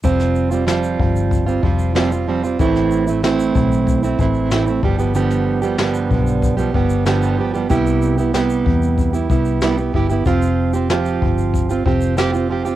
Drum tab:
SH |xxxxxx-xxx-xxx-x|xxxxxxxxxxxxxx-x|xx-xxxxxxx-xxx-x|xxxxxx-xxxxxxx-x|
SD |-o--o-------o---|-o--o-------o---|-o--o-------o---|----o-------o---|
BD |o-----o-o-o-----|o-----o-o-o---o-|------o-o-o-----|o-----o-o-o---o-|

SH |xx-xxx-xxx-xxx-x|
SD |----o-------o---|
BD |o-----o-o-o-----|